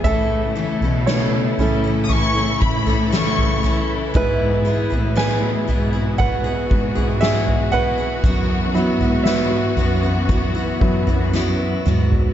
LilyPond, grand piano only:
<<
  \new Staff \with { instrumentName = "Grand piano" } { \time 4/4 \key e \major \tempo 4 = 59 <a' e''>4 <e' cis''>2 r4 | b'4 <b' gis''>4 <b' fis''>4 <gis' e''>8 <b' fis''>8~ | <b' fis''>4 <b' e''>2 r4 | }
  \new Staff \with { instrumentName = "Grand piano" } { \time 4/4 \key e \major r4. <a cis' e'>4. r4 | <gis b e'>4. r2 r8 | r8 <fis b e'>4. r8 <fis b e'>8 r4 | }
>>